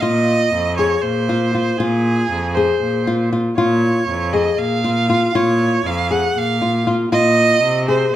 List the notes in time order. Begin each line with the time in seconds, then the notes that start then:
0.01 A#2 F4 D#5
0.53 F2
0.78 G#4 C#5
1.02 A#2 C5
1.29 F4
1.55 F4
1.78 A#2 F4 G#4
2.31 F2
2.55 G#4 C5
2.82 A#2
3.07 F4
3.33 F4
3.57 A#2 F4 C#5
4.09 F2
4.33 G#4 D#5
4.59 A#2 F5
4.84 F4
5.10 F4
5.35 A#2 F4 C#5
5.85 F2 F5
6.11 G#4 F#5
6.36 A#2 F5
6.62 F4
6.87 F4
7.12 A#2 F4 D#5
7.63 C3
7.88 G#4 C5